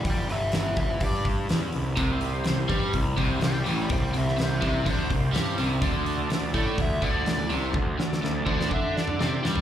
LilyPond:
<<
  \new Staff \with { instrumentName = "Lead electric guitar" } { \time 4/4 \key c \lydian \tempo 4 = 125 <d'' g''>8 <b' e''>8 <b' e''>8 <b' e''>8 d''8 r4. | r2. <d'' g''>8 <d'' g''>8 | <d'' g''>8 <c'' e''>8 <c'' e''>8 <c'' e''>8 c''8 r4. | r4. d''8 e''8 d''8 d''8 r8 |
r4. d''8 e''8 d''8 d''8 r8 | }
  \new Staff \with { instrumentName = "Tonewheel organ" } { \time 4/4 \key c \lydian r1 | <c' g' c''>8 r16 <c' g' c''>4 r8. <c' g' c''>4 r8 | <c' g' c''>8 r16 <c' g' c''>4 r8. <c' g' c''>4 r8 | <d' a' d''>8 r16 <d' a' d''>4 r8. <d' a' d''>4 r8 |
<d' a' c''>8 r16 <d' a' d''>4 r8. <d' a' d''>4 r8 | }
  \new Staff \with { instrumentName = "Overdriven electric guitar" } { \clef bass \time 4/4 \key c \lydian r1 | c4 c8 g8 c8 c8 c8 a,8 | c8 c8 c8 c8 d8 c8 g8 c8 | d4 d8 a8 d8 d8 d8 c8 |
d8 d8 d8 d8 d'4 c'8 g8 | }
  \new Staff \with { instrumentName = "Picked electric bass" } { \clef bass \time 4/4 \key c \lydian g,,8 g,,8 g,,8 g,,8 g,4 e,8 c,8 | c,4 c,8 g,8 c,8 c,8 c,8 a,,8 | c,8 c,8 c,8 c,8 d,8 c,8 g,8 c,8 | d,4 d,8 a,8 d,8 d,8 d,8 c,8 |
d,8 d,8 d,8 d,8 d4 c8 g,8 | }
  \new DrumStaff \with { instrumentName = "Drums" } \drummode { \time 4/4 <hho bd>8 hho8 <hho sn>8 <hho bd>8 <hho bd>8 <hho bd>8 <hho sn>8 hho8 | <hho bd>8 hho8 <hho sn>8 <hho bd>8 <hho bd>8 <hho bd>8 <hho sn>8 hho8 | <hho bd>8 hho16 sn16 <hho sn>8 <hho bd sn>8 <hho bd>8 <hho bd>8 <hho sn>8 hho8 | <hho bd>8 hho8 <hho sn>8 <hho bd>8 <hho bd>8 <hho bd>8 <hho sn>8 hho8 |
<bd tommh>8 sn16 sn16 sn8 bd16 sn16 <bd toml>8 sn16 toml16 sn8 sn16 tomfh16 | }
>>